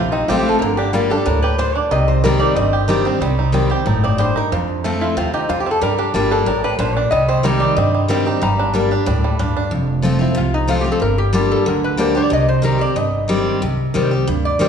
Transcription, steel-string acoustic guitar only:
0.00 0.58 C3 medium
0.28 0.59 F3 medium
0.28 0.60 A3 medium
0.28 0.60 C4 loud
0.28 0.61 F4 loud
0.62 1.23 G2 medium
0.93 1.10 G3 medium
0.93 1.10 A#3 medium
0.93 1.10 D4 medium
0.93 1.09 G4 loud
1.10 1.26 D4 soft
1.10 1.25 G4 medium
1.26 1.57 A2 medium
1.59 1.90 A#2 medium
1.91 2.53 C3 medium
2.24 2.55 D#3 medium
2.24 2.55 G3 medium
2.24 2.55 C4 loud
2.24 2.56 G4 loud
2.56 3.18 G2 medium
2.88 3.04 D#3 medium
2.88 3.05 G3 medium
2.88 3.05 C4 loud
2.88 3.04 G4 medium
3.05 3.21 C4 medium
3.05 3.20 G4 medium
3.22 3.83 C3 medium
3.52 3.69 D#3 medium
3.52 3.69 G3 medium
3.52 3.70 C4 medium
3.52 3.68 G4 medium
3.70 3.86 C4 soft
3.70 3.85 G4 medium
3.86 4.17 A2 medium
4.18 4.49 G2 loud
4.52 5.14 F2 medium
4.84 5.15 F3 medium
4.84 5.15 A3 medium
4.84 5.16 C4 medium
4.84 5.16 F4 medium
5.17 5.78 C3 medium
5.50 5.80 F2 medium
5.81 6.43 G2 medium
6.14 6.45 G3 medium
6.14 6.45 A#3 medium
6.14 6.46 D4 medium
6.14 6.46 G4 loud
6.46 6.77 A2 medium
6.79 7.10 A#2 medium
7.12 7.74 C3 medium
7.43 7.75 D#3 medium
7.43 7.75 G3 medium
7.43 7.75 C4 medium
7.43 7.76 G4 loud
7.77 8.38 G2 medium
8.08 8.25 D#3 loud
8.08 8.25 G3 medium
8.08 8.26 C4 loud
8.08 8.25 G4 loud
8.26 8.42 C4 medium
8.26 8.41 G4 medium
8.42 9.03 G2 medium
8.73 8.90 G3 medium
8.73 8.90 A#3 medium
8.73 8.91 D4 medium
8.73 8.90 G4 medium
8.91 9.07 D4 soft
8.91 9.06 G4 medium
9.06 9.37 A2 medium
9.39 9.70 G2 medium
9.71 10.33 F2 medium
10.02 10.19 F3 medium
10.02 10.20 A3 medium
10.02 10.20 C4 medium
10.02 10.18 F4 loud
10.19 10.36 C4 soft
10.19 10.35 F4 medium
10.35 10.98 C3 medium
10.68 10.84 F3 medium
10.68 10.85 A3 medium
10.68 10.85 C4 loud
10.68 10.83 F4 loud
10.84 11.01 C4 medium
10.84 11.00 F4 medium
11.00 11.63 G2 medium
11.33 11.64 G3 medium
11.33 11.65 A#3 medium
11.33 11.65 D4 loud
11.33 11.65 G4 loud
11.66 12.28 D3 medium
11.97 12.14 G3 medium
11.97 12.15 A#3 loud
11.97 12.15 D4 loud
11.97 12.14 G4 loud
12.15 12.31 D4 medium
12.15 12.30 G4 medium
12.30 12.93 C3 medium
12.62 12.79 D#3 medium
12.62 12.80 G3 medium
12.62 12.80 C4 medium
12.62 12.78 G4 loud
12.79 12.96 C4 soft
12.79 12.95 G4 medium
12.96 13.58 G2 medium
13.28 13.60 D#3 medium
13.28 13.60 G3 loud
13.28 13.60 C4 loud
13.28 13.60 G4 medium
13.62 14.24 C3 medium
13.94 14.10 D#3 medium
13.94 14.11 G3 medium
13.94 14.11 C4 medium
13.94 14.10 G4 loud
14.11 14.27 C4 soft
14.11 14.26 G4 medium
14.27 14.69 G2 medium
14.59 14.69 D#3 medium
14.59 14.69 G3 medium
14.59 14.69 C4 loud
14.59 14.69 G4 loud

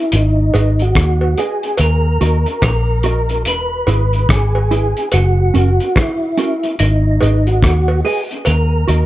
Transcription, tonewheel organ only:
0.00 0.16 E4 medium
0.14 0.83 D#4 medium
0.82 1.40 F#4 medium
1.39 1.77 G#4 medium
1.81 2.63 A#4 medium
2.64 3.43 A#4 medium
3.48 4.32 B4 loud
4.30 5.09 G#4 medium
5.13 5.99 F#4 medium
5.96 6.75 E4 medium
6.80 7.49 D#4 medium
7.47 8.00 F#4 medium
8.05 8.24 G#4 medium
8.47 9.06 A#4 medium

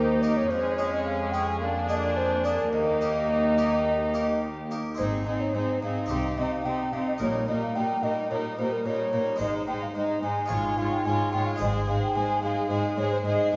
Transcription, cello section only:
0.00 0.51 D#2 soft
0.50 2.69 F2 medium
2.73 4.74 D#2 medium
4.99 5.07 G#2 soft
5.27 5.35 G#2 soft
5.54 5.62 G#2 soft
5.82 5.90 G#2 soft
6.10 6.18 C3 soft
6.37 6.45 C3 soft
6.65 6.73 C3 soft
6.92 7.00 C3 soft
7.20 7.28 A#2 soft
7.48 7.56 A#2 soft
7.75 7.83 A#2 soft
8.03 8.11 A#2 soft
8.30 8.38 A#2 soft
8.58 8.66 A#2 soft
8.86 8.94 A#2 soft
9.13 9.21 A#2 soft
9.40 9.48 G#2 soft
9.68 9.76 G#2 soft
9.95 10.03 G#2 soft
10.23 10.31 G#2 soft
10.51 10.59 G#2 soft
10.78 10.86 G#2 soft
11.06 11.14 G#2 soft
11.34 11.42 G#2 soft
11.61 11.69 G#2 soft
11.88 11.96 G#2 soft
12.16 12.24 G#2 soft
12.43 12.51 G#2 soft
12.70 12.78 G#2 soft
12.98 13.06 G#2 soft
13.25 13.33 G#2 soft
13.52 13.56 G#2 soft

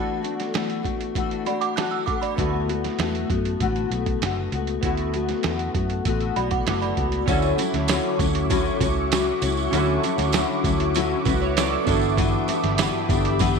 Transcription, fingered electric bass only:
2.38 2.87 D2 medium
2.99 3.23 E2 medium
3.30 3.54 F#2 medium
3.60 3.85 A1 medium
3.91 4.15 B1 medium
4.22 4.46 F#1 medium
4.52 4.77 C#2 medium
4.83 5.32 D2 medium
5.44 5.69 E2 medium
5.75 5.99 F#2 medium
6.05 6.30 A1 medium
6.36 6.61 B1 medium
6.67 6.91 F#1 medium
6.97 7.22 C#2 medium
7.28 7.52 D2 medium
7.74 7.98 D2 medium
8.19 8.68 D2 loud
8.81 9.30 C#2 medium
9.42 9.67 C#2 medium
9.72 9.97 D2 loud
10.18 10.43 D2 loud
10.64 11.13 D2 loud
11.26 11.75 C#2 loud
11.87 12.36 G1 loud
12.64 12.88 G1 medium
13.09 13.58 G1 loud

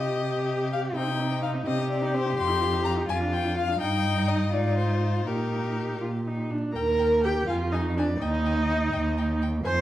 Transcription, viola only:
0.00 0.21 G4 soft
0.25 0.94 G4 soft
0.95 1.09 C4 soft
1.07 1.21 D#4 soft
1.19 1.33 C4 soft
1.31 1.42 D#4 soft
1.43 1.56 C4 soft
1.54 1.68 D#4 soft
1.67 1.80 C4 soft
1.78 1.90 D#4 soft
1.90 2.04 C4 soft
2.02 2.16 D#4 soft
2.14 2.27 C4 soft
2.26 2.36 D#4 soft
2.37 2.51 F4 medium
2.49 2.63 D#4 soft
2.62 2.75 F4 soft
2.73 2.84 D#4 soft
2.85 2.98 F4 soft
2.96 3.08 D#4 soft
3.09 3.22 F4 soft
3.21 3.34 D4 soft
3.33 3.46 F4 medium
3.45 3.56 D4 soft
3.57 3.70 F4 soft
3.68 3.80 D4 soft
3.81 4.49 D#4 medium
4.53 5.25 D#4 medium
5.27 6.00 D#4 soft
6.01 6.09 F4 soft
6.26 6.52 D#4 soft
6.51 6.74 D4 soft
6.75 7.26 A#4 medium
7.25 7.48 G4 medium
7.48 7.74 F4 medium
7.73 7.96 D#4 medium
7.97 8.05 D4 medium
8.20 9.38 D#4 medium
9.65 9.81 C5 medium

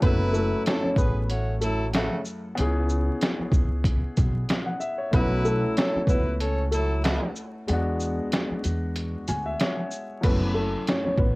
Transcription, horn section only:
0.03 0.63 F#3 loud
0.03 0.63 E4 loud
0.03 0.63 B4 loud
0.66 0.92 F#3 medium
0.66 0.92 E4 medium
0.66 0.92 A4 medium
0.97 1.23 B3 medium
0.97 1.23 G#4 medium
0.97 1.23 B4 medium
1.30 1.56 A3 medium
1.30 1.56 F#4 medium
1.30 1.56 C#5 medium
1.61 1.87 F#3 medium
1.61 1.87 E4 medium
1.61 1.87 A4 loud
1.94 2.19 C#3 loud
1.94 2.19 A3 loud
1.94 2.19 F#4 loud
5.14 5.73 F#3 loud
5.14 5.73 E4 loud
5.14 5.73 B4 loud
5.76 6.02 F#3 medium
5.76 6.02 E4 medium
5.76 6.02 A4 loud
6.08 6.34 F#3 medium
6.08 6.34 E4 medium
6.08 6.34 B4 medium
6.40 6.66 C#4 medium
6.40 6.66 A4 medium
6.40 6.66 C#5 medium
6.73 6.98 F#3 medium
6.73 6.98 E4 loud
6.73 6.98 A4 loud
7.04 7.30 B2 loud
7.04 7.30 A3 loud
7.04 7.30 F#4 loud

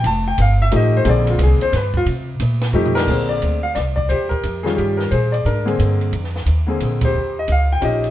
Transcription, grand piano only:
0.06 0.26 A5 loud
0.28 0.38 G5 medium
0.42 0.60 F5 medium
0.62 0.72 E5 loud
0.71 1.05 F3 medium
0.71 1.05 A3 medium
0.71 1.05 D#4 medium
0.71 1.06 G4 medium
0.76 0.95 D#5 medium
0.97 1.07 C5 medium
1.04 1.72 D3 medium
1.04 1.72 A#3 medium
1.04 1.73 C4 medium
1.04 1.42 G#4 medium
1.09 1.28 D5 medium
1.30 1.40 F4 medium
1.43 1.62 G#4 medium
1.62 1.73 C5 loud
1.76 1.95 B4 medium
1.97 2.04 F4 medium
2.74 3.08 F3 medium
2.74 3.08 A3 medium
2.74 3.08 D#4 medium
2.74 3.08 G4 medium
2.95 3.40 D4 medium
2.95 3.27 A#4 loud
3.08 3.59 D3 medium
3.08 3.59 A#3 soft
3.08 3.59 C4 soft
3.08 3.59 G#4 medium
3.29 3.61 D5 medium
3.63 3.75 F5 medium
3.75 3.80 D5 medium
3.96 4.09 D5 medium
4.09 4.62 G4 medium
4.09 4.29 C5 medium
4.29 4.65 A#4 medium
4.63 5.08 D#3 medium
4.63 5.08 G3 medium
4.63 5.09 C#4 medium
4.63 5.09 F4 medium
4.63 4.75 G#4 medium
4.76 4.99 G4 medium
4.97 5.09 A#4 medium
5.11 5.64 G#4 medium
5.11 5.33 C5 medium
5.32 5.44 D5 medium
5.46 6.43 D4 soft
5.46 6.43 A#4 medium
5.65 6.10 D3 medium
5.65 6.10 A#3 medium
5.65 6.10 C4 medium
5.65 6.11 G#4 medium
6.67 7.11 D3 medium
6.67 7.12 A#3 soft
6.67 7.12 C4 soft
6.67 7.12 G#4 medium
7.04 7.46 G4 medium
7.04 7.35 C5 medium
7.39 7.49 D#5 medium
7.52 7.70 F5 medium
7.72 7.84 G5 medium
7.81 8.11 F3 medium
7.81 8.11 C#4 soft
7.81 8.11 D#4 soft
7.81 8.11 G4 medium
7.81 8.11 D#5 medium

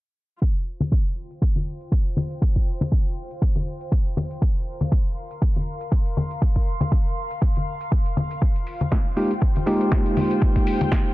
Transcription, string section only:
0.42 6.03 F4 medium
0.57 5.06 C5 medium
0.95 5.23 G5 medium
4.42 9.19 A#4 medium
4.64 9.39 F5 medium
5.12 9.59 C6 medium
8.42 11.14 F4 medium
8.57 11.14 C5 medium
9.36 11.14 G5 medium

